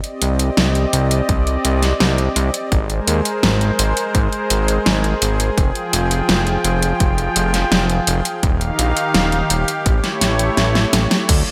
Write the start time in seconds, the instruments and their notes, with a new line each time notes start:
Already playing: analog synth pad C4 G4 D5 D#5
0.04 closed hi-hat
0.22 analog synth bass C2, closed hi-hat
0.39 closed hi-hat
0.57 analog synth bass C2, snare, closed hi-hat
0.75 closed hi-hat
0.93 analog synth bass C2, closed hi-hat
1.11 closed hi-hat
1.29 analog synth bass C2, kick, closed hi-hat
1.47 closed hi-hat
1.65 analog synth bass C2, closed hi-hat
1.83 snare, closed hi-hat
2.00 analog synth bass C2, snare, closed hi-hat
2.18 closed hi-hat
2.36 analog synth bass C2, closed hi-hat
2.54 closed hi-hat
2.72 analog synth bass G#1, analog synth pad G#3 G#4 A#4 C5, kick, closed hi-hat
2.90 closed hi-hat
3.08 analog synth bass D#2, closed hi-hat
3.25 closed hi-hat
3.43 analog synth bass G#1, snare, closed hi-hat
3.61 closed hi-hat
3.79 analog synth bass G#1, closed hi-hat
3.97 closed hi-hat
4.15 analog synth bass G#1, kick, closed hi-hat
4.33 closed hi-hat
4.50 analog synth bass G#1, closed hi-hat
4.68 closed hi-hat
4.86 analog synth bass G#1, snare, closed hi-hat
5.04 closed hi-hat
5.22 analog synth bass G#1, closed hi-hat
5.40 closed hi-hat
5.58 analog synth bass F1, analog synth pad F3 F4 G5, kick, closed hi-hat
5.75 closed hi-hat
5.93 analog synth bass F1, closed hi-hat
6.11 closed hi-hat
6.29 analog synth bass F1, snare, closed hi-hat
6.47 closed hi-hat
6.64 analog synth bass F1, closed hi-hat
6.83 closed hi-hat
7.00 analog synth bass F1, kick, closed hi-hat
7.18 closed hi-hat
7.36 analog synth bass F1, closed hi-hat
7.54 snare, closed hi-hat
7.72 analog synth bass F1, snare, closed hi-hat
7.90 closed hi-hat
8.07 analog synth bass F1, closed hi-hat
8.25 closed hi-hat
8.43 analog synth bass D#1, analog synth pad D#3 D#4 G4 F5, kick, closed hi-hat
8.61 closed hi-hat
8.79 analog synth bass A#1, closed hi-hat
8.97 closed hi-hat
9.14 analog synth bass D#1, snare, closed hi-hat
9.32 closed hi-hat
9.50 analog synth bass D#1, closed hi-hat
9.68 closed hi-hat
9.86 analog synth bass A1, analog synth pad A3 E4 C#5, kick, closed hi-hat
10.04 snare, closed hi-hat
10.21 analog synth bass A1, snare, closed hi-hat
10.39 closed hi-hat
10.57 analog synth bass A1, snare, closed hi-hat
10.75 snare, closed hi-hat
10.93 analog synth bass A1, snare, closed hi-hat
11.11 snare, closed hi-hat
11.29 analog synth bass D2, analog synth pad D3 A3 F4 D5, kick, closed hi-hat, crash